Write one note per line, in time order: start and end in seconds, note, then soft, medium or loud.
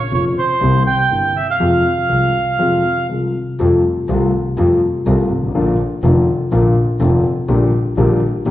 0.00 0.13 C#5 medium
0.11 0.32 F1 medium
0.11 0.33 F1 medium
0.11 0.32 F2 medium
0.11 0.32 C#3 soft
0.11 0.32 F3 soft
0.11 0.32 A#3 soft
0.11 0.32 F4 soft
0.11 0.25 C#5 medium
0.38 0.83 C5 medium
0.61 0.82 C2 medium
0.61 0.82 C3 medium
0.61 0.82 G3 medium
0.61 0.82 A#3 medium
0.61 0.82 E4 medium
0.87 1.37 G5 medium
1.10 1.31 G1 medium
1.10 1.31 G2 soft
1.10 1.31 C3 soft
1.10 1.31 G3 soft
1.10 1.31 A#3 soft
1.10 1.31 E4 soft
1.37 1.47 E5 medium
1.51 3.07 F5 medium
1.59 1.80 F2 medium
1.59 1.81 F2 medium
1.59 1.81 C3 medium
1.59 1.81 F3 medium
1.59 1.81 G#3 medium
1.59 1.81 F4 medium
2.09 2.30 C2 medium
2.09 2.30 C3 soft
2.09 2.30 F3 soft
2.09 2.30 G#3 soft
2.09 2.30 F4 soft
2.59 2.80 F2 medium
2.59 2.80 C3 medium
2.59 2.80 F3 medium
2.59 2.80 G#3 medium
2.59 2.81 F4 medium
3.09 3.31 C2 soft
3.09 3.31 C3 soft
3.09 3.31 F3 soft
3.09 3.31 G#3 soft
3.09 3.31 F4 soft
3.59 3.80 F2 medium
3.59 3.80 C3 medium
3.59 3.80 F3 medium
3.59 3.80 G3 medium
3.59 3.80 A3 medium
3.59 3.81 F4 medium
4.09 4.29 C2 medium
4.09 4.30 C2 medium
4.09 4.30 C3 medium
4.09 4.30 G3 medium
4.09 4.30 A3 medium
4.09 4.30 F4 medium
4.58 4.78 F2 medium
4.58 4.79 F2 medium
4.58 4.78 C3 medium
4.58 4.79 F3 medium
4.58 4.79 G3 medium
4.58 4.79 A3 medium
4.58 4.79 F4 medium
5.06 5.27 C2 medium
5.06 5.27 C3 medium
5.06 5.27 G3 medium
5.06 5.27 A3 medium
5.06 5.27 F4 medium
5.31 5.55 G#1 medium
5.37 5.43 G1 medium
5.43 5.49 G#1 medium
5.48 5.55 A1 medium
5.55 5.76 A#1 medium
5.55 5.76 A#2 medium
5.55 5.75 D3 medium
5.55 5.76 F3 medium
5.55 5.75 A#3 medium
5.55 5.76 F4 medium
6.03 6.24 F1 medium
6.03 6.24 F1 loud
6.03 6.24 F2 medium
6.03 6.24 D3 medium
6.03 6.24 F3 medium
6.03 6.24 A#3 medium
6.03 6.24 F4 medium
6.52 6.72 A#1 medium
6.52 6.73 A#1 medium
6.52 6.73 A#2 medium
6.52 6.72 D3 medium
6.52 6.72 F3 medium
6.52 6.72 A#3 medium
6.52 6.73 F4 medium
7.00 7.21 F1 medium
7.00 7.21 F1 loud
7.00 7.21 F2 medium
7.00 7.21 D3 medium
7.00 7.21 F3 medium
7.00 7.21 A#3 medium
7.00 7.21 F4 medium
7.48 7.69 A#1 medium
7.48 7.69 A#2 medium
7.48 7.69 D3 medium
7.48 7.69 G3 medium
7.48 7.69 A#3 medium
7.48 7.69 G4 medium
7.97 8.18 A#1 loud
7.97 8.18 A#1 medium
7.97 8.18 A#2 medium
7.97 8.18 D3 medium
7.97 8.18 G3 medium
7.97 8.18 A#3 medium
7.97 8.18 G4 medium
8.46 8.51 A#1 medium
8.46 8.51 A#2 medium
8.46 8.51 D3 medium
8.46 8.51 G3 medium
8.46 8.51 A#3 medium
8.46 8.51 G4 medium